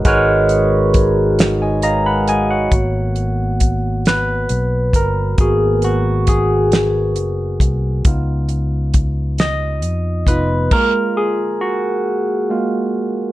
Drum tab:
CC |------|------|------|------|
HH |xxxxxx|xxxxxx|xxxxxx|xxxxxx|
SD |---o--|---o--|---o--|---o--|
BD |o-o---|o-o--o|o-o--o|o-o--o|

CC |x-----|
HH |------|
SD |------|
BD |o-----|